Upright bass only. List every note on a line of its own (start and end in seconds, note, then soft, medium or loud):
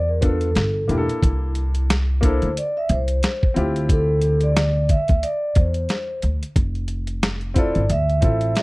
0.00 0.52 E2 medium
0.56 0.86 G1 medium
0.89 1.06 E1 medium
1.23 2.38 C2 medium
2.42 2.55 D2 medium
2.90 3.19 C2 medium
3.56 4.93 D2 loud
5.09 5.21 D2 medium
5.56 5.86 E2 medium
6.23 6.40 D2 medium
6.56 7.71 F1 medium
7.76 7.88 G1 medium
7.90 8.19 D2 medium
8.23 8.52 A1 medium